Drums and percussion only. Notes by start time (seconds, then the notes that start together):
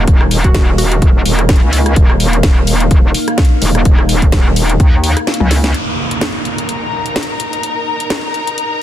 0.07 kick, closed hi-hat
0.21 cross-stick
0.31 open hi-hat
0.44 kick, closed hi-hat
0.55 kick, snare, closed hi-hat
0.78 open hi-hat
0.92 closed hi-hat
1.02 kick, closed hi-hat
1.26 open hi-hat
1.39 cross-stick, closed hi-hat
1.49 kick, snare, closed hi-hat
1.56 closed hi-hat
1.73 open hi-hat
1.86 cross-stick, closed hi-hat
1.96 kick, closed hi-hat
2.10 cross-stick
2.20 open hi-hat
2.33 closed hi-hat
2.43 kick, snare, closed hi-hat
2.67 open hi-hat
2.80 closed hi-hat
2.91 kick, closed hi-hat
3.14 open hi-hat
3.28 cross-stick, closed hi-hat
3.38 kick, snare, closed hi-hat
3.45 closed hi-hat
3.62 open hi-hat
3.75 cross-stick, closed hi-hat
3.85 kick, closed hi-hat
3.99 cross-stick
4.09 open hi-hat
4.22 kick, closed hi-hat
4.32 kick, snare, closed hi-hat
4.56 open hi-hat
4.69 closed hi-hat
4.80 kick, closed hi-hat
5.04 open hi-hat
5.17 cross-stick, closed hi-hat
5.27 snare, closed hi-hat
5.34 closed hi-hat
5.40 high tom
5.51 snare, open hi-hat
5.64 snare, closed hi-hat
5.74 closed hi-hat
6.11 closed hi-hat
6.21 snare, closed hi-hat
6.45 closed hi-hat
6.58 closed hi-hat
6.69 closed hi-hat
7.06 closed hi-hat
7.16 snare, closed hi-hat
7.23 closed hi-hat
7.40 closed hi-hat
7.53 closed hi-hat
7.63 closed hi-hat
8.00 closed hi-hat
8.10 snare, closed hi-hat
8.34 closed hi-hat
8.47 closed hi-hat
8.58 closed hi-hat